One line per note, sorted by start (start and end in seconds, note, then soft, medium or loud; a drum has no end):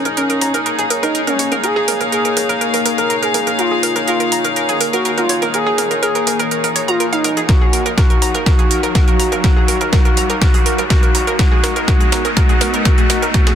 0.00 7.45 A#3 medium
0.00 11.38 D#4 medium
0.00 3.55 G#4 medium
0.00 13.55 G#4 medium
0.00 7.45 C#5 medium
0.00 13.55 C#5 medium
0.00 riser medium
0.05 0.15 A#1 medium
0.05 0.11 A#4 medium
0.05 closed hi-hat soft
0.17 0.53 C#4 loud
0.17 0.23 A#4 loud
0.17 7.49 F5 loud
0.17 closed hi-hat soft
0.30 0.35 A#4 medium
0.30 closed hi-hat soft
0.41 0.51 A#1 medium
0.41 0.47 A#5 medium
0.41 open hi-hat loud
0.54 0.63 A#1 medium
0.54 0.62 A#4 medium
0.54 closed hi-hat soft
0.66 0.69 A#4 medium
0.66 closed hi-hat soft
0.79 0.88 A#1 medium
0.79 0.82 G#4 loud
0.79 closed hi-hat soft
0.90 0.99 A#4 medium
0.90 open hi-hat loud
1.03 1.12 A#1 medium
1.03 1.20 D#4 medium
1.03 1.11 A#4 loud
1.03 closed hi-hat soft
1.15 1.21 A#4 loud
1.15 closed hi-hat soft
1.27 1.54 C#4 medium
1.27 1.33 A#4 medium
1.27 closed hi-hat soft
1.27 mid tom medium
1.39 1.49 A#1 medium
1.39 1.43 C#5 medium
1.39 open hi-hat loud
1.52 1.61 A#1 medium
1.52 1.57 A#4 loud
1.52 closed hi-hat soft
1.52 mid tom medium
1.63 1.99 G#4 loud
1.63 1.67 A#4 medium
1.63 closed hi-hat soft
1.76 1.85 A#1 medium
1.76 1.79 G#4 loud
1.88 1.97 A#4 medium
1.88 mid tom medium
1.88 open hi-hat loud
2.00 2.10 A#1 medium
2.00 2.09 A#4 medium
2.00 closed hi-hat soft
2.12 2.48 G#4 loud
2.12 2.18 A#4 loud
2.12 closed hi-hat soft
2.25 2.30 A#4 medium
2.25 closed hi-hat soft
2.37 2.47 A#1 medium
2.37 2.43 A#4 medium
2.37 open hi-hat loud
2.49 2.59 A#1 medium
2.49 2.55 A#4 loud
2.49 closed hi-hat soft
2.61 2.65 A#4 medium
2.61 closed hi-hat soft
2.74 2.83 A#1 medium
2.74 2.82 A#4 medium
2.74 open hi-hat medium
2.86 2.91 A#4 medium
2.86 open hi-hat loud
2.98 3.07 A#1 medium
2.98 3.15 A#4 medium
2.98 3.06 A#4 medium
2.98 closed hi-hat soft
3.10 3.16 A#4 loud
3.10 closed hi-hat soft
3.22 3.49 G#4 loud
3.22 3.28 A#4 medium
3.22 closed hi-hat soft
3.34 3.44 A#1 medium
3.34 3.40 A#4 medium
3.34 mid tom medium
3.34 open hi-hat loud
3.47 3.56 A#1 medium
3.47 3.52 A#4 medium
3.47 closed hi-hat soft
3.58 3.94 F4 loud
3.58 7.45 A#4 medium
3.58 3.62 A#4 medium
3.58 closed hi-hat soft
3.71 3.80 A#1 medium
3.71 3.75 G#4 medium
3.83 3.92 A#4 medium
3.83 open hi-hat loud
3.95 4.05 A#1 medium
3.95 4.01 A#4 medium
3.95 closed hi-hat soft
4.07 4.43 F4 medium
4.07 4.13 A#4 loud
4.07 closed hi-hat soft
4.20 4.26 A#4 medium
4.20 closed hi-hat soft
4.32 4.42 A#1 medium
4.32 4.38 A#5 medium
4.32 open hi-hat loud
4.44 4.54 A#1 medium
4.44 4.53 A#4 medium
4.44 closed hi-hat soft
4.56 4.60 A#4 medium
4.56 closed hi-hat soft
4.69 4.78 A#1 medium
4.69 4.72 G#4 loud
4.69 closed hi-hat soft
4.81 4.90 A#4 medium
4.81 open hi-hat loud
4.93 5.02 A#1 medium
4.93 5.11 F#4 medium
4.93 5.02 A#4 loud
4.93 closed hi-hat soft
5.05 5.11 A#4 loud
5.05 closed hi-hat soft
5.18 5.44 F4 medium
5.18 5.23 A#4 medium
5.18 closed hi-hat soft
5.18 mid tom medium
5.29 5.39 A#1 medium
5.29 5.33 C#5 medium
5.29 open hi-hat loud
5.42 5.51 A#1 medium
5.42 5.48 A#4 loud
5.42 closed hi-hat soft
5.42 mid tom medium
5.54 5.89 G#4 loud
5.54 5.57 A#4 medium
5.54 closed hi-hat soft
5.66 5.76 A#1 medium
5.66 5.70 G#4 loud
5.78 5.87 A#4 medium
5.78 mid tom medium
5.78 open hi-hat loud
5.91 6.00 A#1 medium
5.91 5.99 A#4 medium
5.91 closed hi-hat soft
6.03 6.38 G#4 loud
6.03 6.08 A#4 loud
6.03 closed hi-hat soft
6.15 6.21 A#4 medium
6.15 closed hi-hat soft
6.27 6.37 A#1 medium
6.27 6.33 A#4 medium
6.27 open hi-hat loud
6.39 6.49 A#1 medium
6.39 6.45 A#4 loud
6.39 closed hi-hat soft
6.51 6.55 A#4 medium
6.51 closed hi-hat soft
6.64 6.73 A#1 medium
6.64 6.72 A#4 medium
6.64 open hi-hat medium
6.76 6.82 C#5 medium
6.76 open hi-hat loud
6.88 6.97 A#1 medium
6.88 7.06 F4 medium
6.88 6.94 A#5 loud
6.88 closed hi-hat soft
7.00 7.09 A#4 medium
7.00 closed hi-hat soft
7.13 7.39 D#4 medium
7.13 7.18 F5 loud
7.13 closed hi-hat soft
7.24 7.34 A#1 medium
7.24 7.30 A#4 loud
7.24 mid tom medium
7.24 open hi-hat loud
7.37 7.46 A#1 medium
7.37 7.43 G#4 medium
7.37 closed hi-hat soft
7.49 11.35 D#4 medium
7.49 7.84 F#4 medium
7.49 13.55 F#4 medium
7.49 7.52 A#4 medium
7.49 11.35 F5 medium
7.49 kick loud
7.49 snare soft
7.49 closed hi-hat soft
7.61 7.71 D#2 medium
7.61 7.65 G#4 medium
7.73 7.82 A#4 medium
7.73 open hi-hat loud
7.86 7.95 D#2 medium
7.86 7.91 A#4 medium
7.86 closed hi-hat soft
7.97 8.33 F#4 medium
7.97 8.03 A#4 loud
7.97 kick loud
7.97 snare medium
7.97 closed hi-hat soft
8.10 8.16 A#4 medium
8.10 closed hi-hat soft
8.22 8.32 D#2 medium
8.22 8.28 A#5 medium
8.22 open hi-hat loud
8.34 8.44 D#2 medium
8.34 8.43 A#4 medium
8.34 closed hi-hat soft
8.46 8.82 F#4 medium
8.46 8.50 A#4 medium
8.46 kick loud
8.46 snare medium
8.46 closed hi-hat soft
8.59 8.68 D#2 medium
8.59 8.62 G#4 medium
8.59 closed hi-hat soft
8.71 8.80 A#4 medium
8.71 open hi-hat loud
8.83 8.93 D#2 medium
8.83 8.89 A#4 medium
8.83 closed hi-hat soft
8.95 9.31 F#4 medium
8.95 9.01 A#4 loud
8.95 kick loud
8.95 snare medium
8.95 closed hi-hat soft
9.08 9.13 A#4 medium
9.08 closed hi-hat soft
9.08 mid tom medium
9.19 9.29 D#2 medium
9.19 9.25 A#5 medium
9.19 open hi-hat loud
9.32 9.41 D#2 medium
9.32 9.40 A#4 medium
9.32 closed hi-hat soft
9.32 mid tom medium
9.44 9.80 F#4 loud
9.44 9.47 A#4 medium
9.44 kick loud
9.44 snare medium
9.44 closed hi-hat soft
9.56 9.66 D#2 medium
9.56 9.60 G#4 medium
9.68 9.77 A#4 medium
9.68 mid tom medium
9.68 open hi-hat loud
9.81 9.90 D#2 medium
9.81 9.86 A#4 medium
9.81 closed hi-hat soft
9.93 10.28 F#4 medium
9.93 9.99 A#4 loud
9.93 kick loud
9.93 snare medium
9.93 closed hi-hat soft
10.05 10.11 A#4 medium
10.05 closed hi-hat soft
10.17 10.27 D#2 medium
10.17 10.23 A#5 medium
10.17 open hi-hat loud
10.30 10.39 D#2 medium
10.30 10.38 A#4 medium
10.30 closed hi-hat soft
10.41 10.77 F#4 loud
10.41 10.45 A#4 medium
10.41 kick loud
10.41 snare medium
10.41 closed hi-hat soft
10.54 10.63 D#2 medium
10.54 10.57 G#4 medium
10.54 open hi-hat medium
10.66 10.75 A#4 medium
10.66 open hi-hat loud
10.78 10.88 D#2 medium
10.78 10.84 A#4 medium
10.78 closed hi-hat soft
10.90 11.26 F#4 medium
10.90 10.96 A#4 loud
10.90 kick loud
10.90 snare medium
10.90 closed hi-hat soft
11.03 11.08 A#4 medium
11.03 closed hi-hat soft
11.15 11.25 D#2 medium
11.15 11.21 A#5 medium
11.15 mid tom medium
11.15 open hi-hat loud
11.27 11.37 D#2 medium
11.27 11.36 A#4 medium
11.27 closed hi-hat soft
11.39 13.55 B3 medium
11.39 13.55 D#4 loud
11.39 11.75 F#4 loud
11.39 11.43 A#4 medium
11.39 13.55 D#5 loud
11.39 kick loud
11.39 snare medium
11.39 closed hi-hat soft
11.52 11.61 B1 medium
11.52 11.55 G#4 medium
11.63 11.72 A#4 medium
11.63 snare medium
11.63 open hi-hat loud
11.76 11.85 B1 medium
11.76 11.82 A#4 medium
11.76 closed hi-hat soft
11.88 12.23 F#4 loud
11.88 11.91 A#4 medium
11.88 kick loud
11.88 snare medium
11.88 closed hi-hat soft
12.00 12.04 G#4 medium
12.00 closed hi-hat soft
12.12 12.22 B1 medium
12.12 12.21 A#4 medium
12.12 snare medium
12.12 open hi-hat loud
12.25 12.34 B1 medium
12.25 12.30 A#4 medium
12.25 closed hi-hat soft
12.37 12.72 F#4 loud
12.37 12.40 A#4 medium
12.37 kick loud
12.37 snare medium
12.37 closed hi-hat soft
12.49 12.59 B1 medium
12.49 12.53 G#4 medium
12.49 closed hi-hat soft
12.61 12.70 A#4 medium
12.61 snare medium
12.61 open hi-hat loud
12.74 12.83 B1 medium
12.74 12.79 A#4 medium
12.74 closed hi-hat soft
12.85 13.21 F#4 loud
12.85 12.89 A#4 medium
12.85 kick loud
12.85 snare medium
12.85 closed hi-hat soft
12.98 13.01 G#4 medium
12.98 closed hi-hat soft
12.98 mid tom loud
13.10 13.20 B1 medium
13.10 13.19 A#4 medium
13.10 snare medium
13.10 open hi-hat loud
13.22 13.32 B1 medium
13.22 13.28 A#4 medium
13.22 closed hi-hat soft
13.22 mid tom loud
13.34 13.55 F#4 loud
13.34 13.38 A#4 medium
13.34 kick loud
13.34 snare medium
13.34 closed hi-hat soft
13.47 13.50 G#4 medium
13.47 snare medium
13.47 closed hi-hat soft